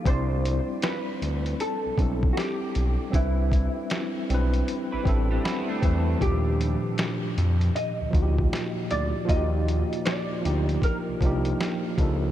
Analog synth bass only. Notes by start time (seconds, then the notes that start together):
0.06 C2
1.22 D2
1.86 B1
1.98 B1
2.76 B1
3.14 C2
4.30 B1
4.94 A1
5.06 A1
5.83 E2
6.22 D#2
7.38 F2
8.02 D2
8.14 D2
8.92 D2
9.29 D#2
10.45 D2
11.09 C2
11.21 C2
11.98 C#2